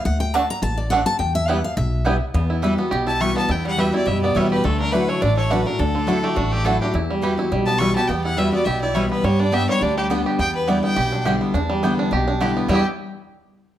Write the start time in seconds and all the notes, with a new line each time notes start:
0.05 D2 F#5
0.20 G5
0.34 A3 D4 F#4 D5 F#5 A5
0.50 A#5
0.62 A1 A5
0.77 D5
0.90 A3 D4 F#4 D5 F#5
1.06 A5
1.19 E2 G5
1.35 E5
1.48 G3 B3 E4 B4 F#5 G5
1.64 F5
1.77 B1 E5
2.05 G3 B3 E4 B4 G5
2.34 E2 B3
2.50 E4
2.62 E3 G3 B3 E4 F#4 B4 E5
2.78 B3 F#4
2.91 B1 B2 G4
3.07 E4 A5
3.20 E3 G3 B3 E4 F#4 B4 E5 C#6
3.37 B3 A5
3.49 E2 E4 G5
3.65 G3 F#5
3.77 E3 G3 B3 E4 F#4 G4 B4 E5
3.92 B3 E4 F#4 D5
4.06 F#2 B2 G3 E5
4.22 B3 D5
4.34 E2 E3 G3 B3 E4 F#4 B4 C#5 E5
4.51 G4 B4
4.64 D2 D3 A3 A4
4.80 D4 A#4
4.92 F#3 A3 D4 E4 F#4 B4 D5 F#5
5.09 A3 C#5
5.21 A1 A2 D4 D5
5.37 A3 C#5
5.50 F#3 A3 D4 E4 F#4 B4 D5 F#5
5.66 D4 E4 F#4 A#4
5.79 D2 D3 D4 A4
5.95 D3
6.07 F#3 A3 D4 E4 F#4 D5 F#5
6.23 A3 G4
6.36 A1 A2 D4 F#4
6.52 A3 G4
6.64 F#3 A3 D4 E4 F#4 A4 D5 F#5
6.81 D4 G4
6.94 E2 E4
7.10 G3
7.22 E3 G3 B3 E4 F#4 G4 B4 E5
7.37 B3 E4 F#4
7.52 B1 B2 G3
7.66 B3 A5
7.78 E3 G3 B3 E4 F#4 B4 E5 C#6
7.96 B3 F#4 G4 A5
8.08 E2 B3 G5
8.24 E4 F#5
8.37 E3 G3 B3 E4 F#4 B4 E5
8.52 B3 F#4 D5
8.65 B1 B2 G4 E5
8.81 E4 D5
8.94 E3 G3 B3 E4 F#4 B4 C#5 E5
9.11 B3 B4
9.24 G2 G3 C#5
9.39 D4 D5
9.52 G3 B3 D4 G4 D5 E5 G5
9.69 G3 C#5
9.81 D2 D3 D4 D5
9.97 G3 G4
10.10 G3 B3 D4 G4 D5 G5
10.26 G4
10.39 E2 B3 G5
10.55 B4
10.67 D3 G3 B3 E4 D5 G5
10.83 B3 G5
10.96 B1 B2 G4
11.12 D4
11.25 D3 G3 B3 E4 G4 D5 G5
11.41 B3
11.54 E2 D4
11.70 G3
11.83 D3 G3 B3 E4 D5 G5
11.99 D4
12.11 B1 B2 G4
12.28 D4
12.40 D3 G3 B3 E4 G4 D5 G5
12.57 B3
12.68 E2 B2 D3 G3 B3 E4 D5 G5
12.73 E4 G4